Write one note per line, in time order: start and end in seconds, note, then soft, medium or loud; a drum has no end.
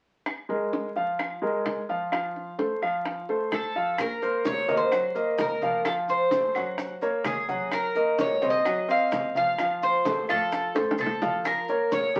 0.26 high bongo medium
0.26 claves medium
0.49 0.87 G#3 medium
0.49 0.87 G#4 medium
0.49 0.88 A#4 medium
0.49 high bongo soft
0.73 high bongo medium
0.96 1.34 F3 medium
0.96 1.34 F4 medium
0.96 1.34 F5 medium
0.96 high bongo soft
1.19 high bongo medium
1.19 claves medium
1.42 1.80 G#3 medium
1.42 1.81 G#4 medium
1.42 1.81 A#4 medium
1.66 high bongo medium
1.66 low bongo medium
1.89 2.08 F3 medium
1.89 2.08 F4 medium
1.89 2.09 F5 medium
1.89 high bongo soft
2.12 2.50 F3 medium
2.12 2.50 F4 medium
2.12 2.50 F5 medium
2.12 high bongo medium
2.12 claves medium
2.36 high bongo soft
2.58 2.78 A3 medium
2.58 2.78 A4 medium
2.58 2.78 C5 medium
2.58 high bongo medium
2.82 3.20 F3 medium
2.82 3.20 F4 medium
2.82 3.21 F5 medium
2.82 high bongo soft
2.82 claves medium
3.05 high bongo medium
3.29 3.67 A3 medium
3.29 3.67 A4 medium
3.29 3.68 C5 medium
3.29 high bongo soft
3.52 4.00 A4 medium
3.52 high bongo medium
3.52 low bongo medium
3.52 claves medium
3.75 3.94 F3 medium
3.75 3.95 F4 medium
3.75 3.95 F5 medium
3.98 4.06 A#1 medium
3.98 4.46 A#4 medium
3.98 high bongo medium
3.98 high conga soft
3.98 claves medium
3.98 maracas medium
4.22 4.60 A#3 medium
4.22 4.60 A#4 medium
4.22 4.61 C5 medium
4.22 high bongo soft
4.22 high conga soft
4.22 maracas soft
4.45 4.77 C#5 loud
4.45 high bongo medium
4.45 high conga medium
4.45 maracas medium
4.68 4.76 D#2 medium
4.68 4.88 A#3 medium
4.68 4.88 A#4 medium
4.68 4.88 D#5 medium
4.68 high bongo soft
4.68 high conga medium
4.68 maracas soft
4.77 5.35 C5 medium
4.91 5.11 F#3 medium
4.91 5.11 F#4 medium
4.91 5.11 F#5 medium
4.91 high bongo medium
4.91 high conga soft
4.91 claves medium
4.91 maracas medium
5.15 5.53 A#3 medium
5.15 5.54 A#4 medium
5.15 5.54 D#5 medium
5.15 high conga soft
5.15 maracas soft
5.38 5.46 F2 medium
5.38 5.85 A#4 medium
5.38 high bongo medium
5.38 low bongo medium
5.38 high conga medium
5.38 maracas medium
5.61 5.81 F3 medium
5.61 5.81 F4 medium
5.61 5.82 F5 medium
5.61 high bongo soft
5.61 high conga medium
5.61 maracas soft
5.85 6.24 F3 medium
5.85 6.24 F4 medium
5.85 5.92 A4 medium
5.85 6.24 F5 medium
5.85 high bongo medium
5.85 claves medium
5.85 maracas medium
6.08 6.98 C5 medium
6.08 high bongo soft
6.08 high conga soft
6.08 maracas soft
6.31 6.51 A3 medium
6.31 6.51 A4 medium
6.31 6.51 C5 medium
6.31 high bongo medium
6.31 high conga medium
6.31 maracas medium
6.55 6.63 F#2 medium
6.55 6.93 F#3 medium
6.55 6.94 F#4 medium
6.55 6.94 F#5 medium
6.55 high bongo soft
6.55 high conga soft
6.55 claves medium
6.55 maracas soft
6.78 high bongo medium
6.78 high conga soft
6.78 maracas medium
7.02 7.40 A#3 medium
7.02 7.40 A#4 medium
7.02 7.41 C#5 medium
7.02 high bongo soft
7.02 high conga soft
7.02 maracas soft
7.24 7.33 D#2 medium
7.24 7.69 G#4 medium
7.24 high bongo medium
7.24 low bongo medium
7.24 high conga medium
7.24 claves medium
7.24 maracas medium
7.48 7.87 F#3 medium
7.48 7.87 F#4 medium
7.48 7.87 F#5 medium
7.48 high conga medium
7.48 maracas soft
7.72 8.16 A#4 medium
7.72 high bongo medium
7.72 high conga soft
7.72 claves medium
7.72 maracas medium
7.95 8.34 A#3 medium
7.95 8.34 A#4 medium
7.95 8.34 D#5 medium
7.95 high bongo soft
7.95 high conga soft
7.95 maracas soft
8.18 8.49 C#5 medium
8.18 high bongo medium
8.18 high conga medium
8.18 maracas medium
8.42 8.50 C2 medium
8.42 8.61 C4 medium
8.42 8.61 C5 medium
8.42 8.61 D#5 medium
8.42 high bongo soft
8.42 high conga medium
8.42 maracas soft
8.50 8.90 D#5 medium
8.65 8.85 F#3 medium
8.65 8.85 F#4 medium
8.65 8.85 F#5 medium
8.65 high bongo medium
8.65 high conga soft
8.65 claves medium
8.65 maracas medium
8.88 9.27 C4 medium
8.88 9.27 C5 medium
8.88 9.27 D#5 medium
8.88 9.36 F5 loud
8.88 high conga soft
8.88 maracas soft
9.12 9.20 F2 medium
9.12 high bongo medium
9.12 low bongo medium
9.12 high conga medium
9.12 maracas medium
9.35 9.55 F3 medium
9.35 9.55 F4 medium
9.35 9.55 F5 medium
9.35 9.80 F5 loud
9.35 high bongo soft
9.35 high conga medium
9.35 maracas soft
9.58 9.97 F3 medium
9.58 9.97 F4 medium
9.58 9.97 F5 medium
9.58 high bongo medium
9.58 high conga soft
9.58 claves medium
9.58 maracas medium
9.82 10.31 C5 medium
9.82 high bongo soft
9.82 high conga soft
9.82 maracas soft
10.05 10.25 A3 medium
10.05 10.25 A4 medium
10.05 10.25 C5 medium
10.05 high bongo medium
10.05 high conga medium
10.05 maracas medium
10.28 10.36 A2 medium
10.28 10.67 F3 medium
10.28 10.67 F4 medium
10.28 10.95 A4 medium
10.28 10.67 F5 medium
10.28 high bongo soft
10.28 high conga soft
10.28 claves medium
10.28 maracas soft
10.52 high bongo medium
10.52 high conga soft
10.52 maracas medium
10.75 10.83 A2 medium
10.75 11.13 A3 medium
10.75 11.14 A4 medium
10.75 11.14 C5 medium
10.75 high bongo medium
10.75 high conga soft
10.75 maracas soft
10.91 high bongo medium
10.98 11.06 A#2 medium
10.98 11.43 A4 medium
10.98 high conga medium
10.98 claves medium
10.98 maracas medium
11.06 low bongo medium
11.22 11.60 F3 medium
11.22 11.60 F4 medium
11.22 11.61 F5 medium
11.22 low bongo medium
11.22 high conga medium
11.22 maracas soft
11.45 11.89 A#4 medium
11.45 high bongo medium
11.45 high conga soft
11.45 claves medium
11.45 maracas medium
11.68 12.07 A#3 medium
11.68 12.07 A#4 medium
11.68 12.07 C#5 medium
11.68 high bongo soft
11.68 high conga soft
11.68 maracas soft
11.92 12.20 C#5 medium
11.92 high bongo medium
11.92 high conga medium
11.92 maracas medium
12.15 12.20 C2 medium
12.15 12.20 G3 medium
12.15 12.20 G4 medium
12.15 12.20 A#4 medium
12.15 high bongo soft
12.15 high conga medium
12.15 maracas soft